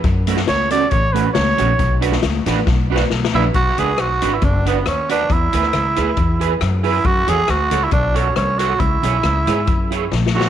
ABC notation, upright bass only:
X:1
M:4/4
L:1/8
Q:1/4=137
K:Bdor
V:1 name="Upright bass" clef=bass
F,,2 C,,2 A,,,2 C,, ^A,,, | B,,,2 C,, A,,, B,,,2 B,,, ^A,,, | B,,, C,, B,,, G,,, F,,,2 ^D,,2 | E,, D,, C,, D,, E,,2 F,,2 |
F,, E,, D,, C,, B,,,2 =C,,2 | C,, B,,, C,, G,, F,,2 ^A,,,2 |]